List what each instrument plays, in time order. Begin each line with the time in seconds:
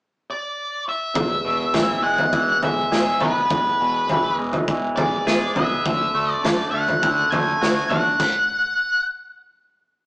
0.30 lead electric guitar D5
0.89 lead electric guitar E5
1.14 fingered electric bass E1, clean electric guitar E2, kick, floor tom
1.45 fingered electric bass E1, clean electric guitar B2
1.74 fingered electric bass A1, clean electric guitar E3, snare, floor tom
2.03 fingered electric bass E1, clean electric guitar G#3, lead electric guitar F#5
2.18 floor tom
2.33 fingered electric bass E1, clean electric guitar E3, kick
2.62 fingered electric bass E1, clean electric guitar G#3, lead electric guitar E5, floor tom
2.92 fingered electric bass E1, clean electric guitar G#4, snare
3.21 fingered electric bass E1, clean electric guitar B3, lead electric guitar B4, floor tom
3.50 fingered electric bass E1, clean electric guitar E2, kick, floor tom
3.80 fingered electric bass E1, clean electric guitar B2
4.08 fingered electric bass A1, clean electric guitar E3, floor tom
4.37 fingered electric bass E1, clean electric guitar G#3
4.53 floor tom
4.68 fingered electric bass E1, clean electric guitar E3, kick
4.96 fingered electric bass E1, clean electric guitar G#3, lead electric guitar D5, floor tom
5.25 fingered electric bass E1, clean electric guitar G#4, snare
5.54 fingered electric bass E1, clean electric guitar B3, lead electric guitar E5, floor tom, mid tom
5.85 fingered electric bass D2, clean electric guitar D3, kick, floor tom
6.14 fingered electric bass D2, clean electric guitar A3
6.33 lead electric guitar D5
6.43 fingered electric bass F#2, clean electric guitar D3, snare, floor tom
6.71 fingered electric bass D2, clean electric guitar A3, lead electric guitar F#5
6.88 floor tom
7.03 fingered electric bass D2, clean electric guitar D3, kick
7.31 fingered electric bass D2, clean electric guitar A3, lead electric guitar G#5, floor tom
7.61 fingered electric bass D2, clean electric guitar F#4, snare
7.89 fingered electric bass E2, clean electric guitar D4, lead electric guitar F#5, floor tom
8.20 kick, crash